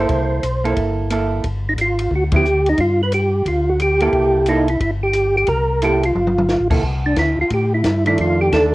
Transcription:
Already playing: hollow-body jazz guitar A#3 E4, tonewheel organ C5
0.00 hollow-body jazz guitar A4
0.09 tonewheel organ C2, kick, ride
0.43 tonewheel organ B1, hi-hat pedal, ride
0.64 hollow-body jazz guitar A#3 E4 A4, ride
0.76 tonewheel organ G1, kick, ride
1.10 hollow-body jazz guitar A#3 E4 A4, hi-hat pedal, ride
1.44 tonewheel organ G1, kick, ride
1.69 tonewheel organ D#4
1.76 tonewheel organ G#1, hi-hat pedal, ride
1.81 tonewheel organ F4
1.99 ride
2.11 tonewheel organ D2, kick
2.16 tonewheel organ F#4
2.32 hollow-body jazz guitar F3 B3 E4, kick, ride
2.36 tonewheel organ G4
2.45 hi-hat pedal
2.66 tonewheel organ D#4, ride
2.78 tonewheel organ G2 F4, kick, ride
3.03 tonewheel organ B4
3.12 tonewheel organ G4, hi-hat pedal, ride
3.45 tonewheel organ D2 F4, kick, ride
3.69 tonewheel organ F#4
3.79 tonewheel organ G4, hi-hat pedal, ride
4.00 hollow-body jazz guitar A#3 E4 A4, tonewheel organ G4, ride
4.12 tonewheel organ C2, kick, ride
4.46 hollow-body jazz guitar A#3 E4 A4, tonewheel organ D#4, hi-hat pedal, ride
4.68 tonewheel organ E4, ride
4.80 tonewheel organ G1 E4, kick, ride
5.03 tonewheel organ G4
5.13 hi-hat pedal, ride
5.37 tonewheel organ G4
5.47 tonewheel organ C2 A#4, kick, ride
5.82 hollow-body jazz guitar A#3 E4 A4, tonewheel organ G4, hi-hat pedal, ride
6.03 tonewheel organ F4, ride
6.15 tonewheel organ G1, mid tom
6.27 mid tom
6.38 mid tom
6.49 snare, hi-hat pedal
6.60 tonewheel organ A1
6.70 tonewheel organ B1, hollow-body jazz guitar A#3 E4 A4, kick, crash
6.83 tonewheel organ C2, kick
7.06 tonewheel organ D4
7.16 tonewheel organ D2 E4, kick, snare, hi-hat pedal, ride
7.37 tonewheel organ D2 F4
7.50 tonewheel organ A2 G4, kick, ride
7.74 tonewheel organ E4
7.84 tonewheel organ G2, kick, snare, hi-hat pedal, ride
8.06 hollow-body jazz guitar D#3 A3 D4, tonewheel organ E4, ride
8.18 tonewheel organ F2 F4, kick, ride
8.41 tonewheel organ G4
8.52 tonewheel organ D#2 A4, hollow-body jazz guitar D#3 A3 D4, kick, snare, hi-hat pedal, ride

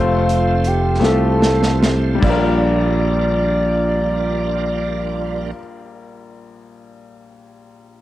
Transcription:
Already playing: fingered electric bass F1, upright piano A3 C4 F4 C5, tonewheel organ A3 C4 F4 C5, bassoon F4
0.29 closed hi-hat
0.64 bassoon G4, closed hi-hat
1.00 fingered electric bass C2, upright piano A3 C4 F4 G4, snare
1.04 bassoon A4
1.42 snare
1.63 snare
1.83 snare
2.15 upright piano G3
2.19 upright piano A#1 D4, fingered electric bass A#1, tonewheel organ G3 D4 F4 A#4, kick, crash
2.24 upright piano F4, bassoon D5
2.30 upright piano A#4

